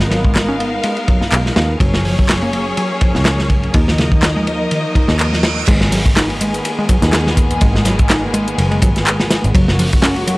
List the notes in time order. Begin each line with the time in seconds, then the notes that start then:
Already playing: G#1 G#3 B3 D#4 A#4 F5
0.00 snare
0.11 F#3, snare, ride
0.24 G#3, kick
0.35 snare, clap, ride
0.48 C#4
0.59 B3, ride
0.83 G#3, ride
0.97 ride
1.08 F#3, kick, ride
1.21 muted picked electric bass stroke, snare
1.32 B1, clap, ride
1.46 snare
1.56 D#2, snare, ride
1.80 F#1 F#3 A#3 C#4 G#4 C#5, kick, ride
1.94 snare
2.05 F3, open hi-hat
2.18 F#3, kick
2.29 snare, clap, ride
2.42 A#3, ride
2.53 A#3, ride
2.77 F#3, ride
3.01 F3, kick, ride
3.15 C#2, snare
3.25 snare, clap, ride
3.39 snare
3.50 kick, ride
3.63 ride
3.74 D#2 D#3 F3 D#4 A#4 D#5, kick, ride
3.88 snare
3.98 C#3, snare, ride
4.12 D#3, kick
4.23 snare, clap, ride
4.36 G#3
4.47 F3, ride
4.71 D#3, ride, reverse cymbal
4.95 D#4, kick, ride
5.08 D#2, snare
5.19 clap, ride
5.33 snare
5.43 snare, ride
5.68 G#1 D#3 G#3 A#3 B3 G#4, kick, closed hi-hat, crash, ride
5.81 G#3, snare
5.92 F#3, closed hi-hat, open hi-hat
6.06 kick, closed hi-hat
6.16 D#4, snare, clap, closed hi-hat, ride
6.30 ride
6.41 G#3, closed hi-hat, ride
6.54 closed hi-hat
6.65 closed hi-hat, ride
6.79 G#3
6.89 F#3, kick, closed hi-hat, ride
7.02 D#2, snare, closed hi-hat
7.13 snare, clap, closed hi-hat, ride
7.27 snare
7.37 kick, closed hi-hat, ride
7.51 closed hi-hat, ride
7.61 G#1 G#3, kick, closed hi-hat, ride
7.75 G#3, snare
7.85 F#3, snare, closed hi-hat, ride
7.99 kick, closed hi-hat
8.10 D#4, snare, clap, closed hi-hat, ride
8.34 G#3, closed hi-hat, ride
8.48 closed hi-hat
8.58 F#1, closed hi-hat, ride
8.71 G#3, ride
8.82 G#1 F#3, kick, closed hi-hat, ride
8.96 snare, closed hi-hat
9.06 clap, closed hi-hat, ride
9.20 snare
9.31 snare, closed hi-hat, ride
9.44 G#1, closed hi-hat
9.54 F#1 C#3 F#3 A#3 F#4, kick, closed hi-hat, ride
9.68 F#3, snare
9.79 F3, closed hi-hat, open hi-hat
9.93 kick, closed hi-hat
10.02 C#4, snare, clap, closed hi-hat, ride
10.16 ride
10.27 F#3, closed hi-hat, ride